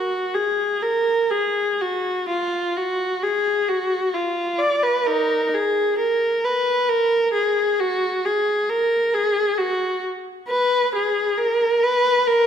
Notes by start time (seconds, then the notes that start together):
Already playing: F#4
0.35 G#4
0.83 A#4
1.31 G#4
1.81 F#4
2.29 F4
2.78 F#4
3.23 G#4
3.69 F#4
4.14 F4
4.59 D5
4.83 B4
5.07 D#4 A#4
5.54 G#4
5.99 A#4
6.45 B4
6.89 A#4
7.34 G#4
7.80 F#4
8.25 G#4
8.70 A#4
9.14 G#4
9.58 F#4
10.49 B4
10.95 G#4
11.38 A#4
11.83 B4
12.27 A#4